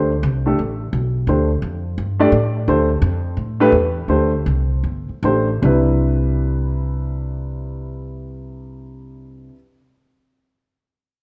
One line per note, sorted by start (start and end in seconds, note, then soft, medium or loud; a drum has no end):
0.00 0.22 D2 medium
0.00 0.10 D4 medium
0.00 0.11 G4 medium
0.00 0.11 C5 medium
0.23 0.57 C2 loud
0.46 0.57 A3 medium
0.46 0.58 D4 medium
0.46 0.58 G4 medium
0.46 0.58 A4 medium
0.59 0.92 A1 medium
0.93 1.26 B1 loud
1.27 1.61 D2 medium
1.27 1.48 A3 medium
1.27 1.49 D4 medium
1.27 1.49 G4 soft
1.27 1.49 C5 medium
1.62 1.96 F2 medium
1.98 2.31 G2 medium
2.19 2.31 A3 medium
2.19 2.31 D4 medium
2.19 2.32 G4 medium
2.19 2.32 D5 medium
2.32 2.66 A2 loud
2.68 3.01 D2 medium
2.68 2.88 A3 medium
2.68 2.88 D4 medium
2.68 2.88 G4 medium
2.68 2.88 C5 medium
3.02 3.36 F2 loud
3.37 3.71 A2 medium
3.60 3.72 A3 loud
3.60 3.72 D4 medium
3.60 3.72 G4 medium
3.60 3.72 B4 loud
3.72 4.08 E2 medium
4.08 4.44 D2 medium
4.08 4.30 A3 medium
4.08 4.31 D4 medium
4.08 4.31 G4 medium
4.08 4.31 C5 medium
4.46 4.83 C2 medium
4.83 5.07 G1 medium
5.09 muted upright bass stroke soft
5.23 5.62 A1 loud
5.23 5.46 A3 medium
5.23 5.47 D4 medium
5.23 5.47 G4 medium
5.23 5.47 C5 medium
5.62 9.48 C2 loud
5.62 9.51 C3 medium
5.62 9.52 G3 medium
5.62 9.53 D4 medium
5.62 9.53 E4 medium
5.62 9.54 B4 medium